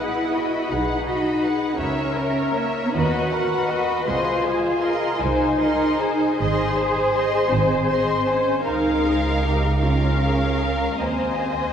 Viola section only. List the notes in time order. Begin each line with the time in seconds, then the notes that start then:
0.00 G#4
0.35 F#4
0.72 G#4
1.08 F#4
1.44 G#4
1.80 A#4
2.96 B4
3.33 A#4
3.71 B4
4.07 C5
4.45 G#4
4.85 A#4
5.22 C5
5.61 A#4
6.01 G#4
6.41 C5
8.66 A#4
9.05 G#4
9.45 G4
9.83 F4
10.22 G#4
10.62 A#4
11.02 C5